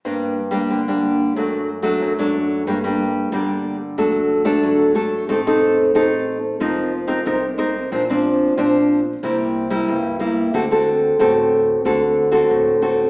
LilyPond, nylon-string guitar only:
\new Staff \with { instrumentName = "Nylon-string guitar" } { \time 4/4 \key g \minor \tempo 4 = 92 << { <g bes d'>8 r16 <g bes d'>8 <g bes d'>8. <fis a d'>8 r16 <fis a d'>8 <fis a d'>8. | <g bes d'>16 <g bes d'>8. <g bes d'>8. r16 <a d' a'>8. <a d' a'>8. <a d' a'>8 | <c' ees' a'>16 <c' ees' a'>8. <c' ees' a'>8. r16 <c' ees' bes'>8 r16 <c' ees' bes'>16 <c' ees' bes'>16 r16 <c' ees' bes'>8 | <f c' d'>16 <f c' d'>8. <f c' d'>8. r16 <g bes e'>8. <g bes e'>8. <g bes e'>8 |
<c' fis' a'>16 <c' fis' a'>8. <c' fis' a'>4 <c' fis' a'>8. <c' fis' a'>8. <c' fis' a'>8 | } \\ { g,4 d4 fis,4 fis,4 | g,4 d4 fis4 fis4 | a4 a4 f4 c4 | bes,4 f4 c4 g,4 |
d4 a,4 d4 a,4 | } >> }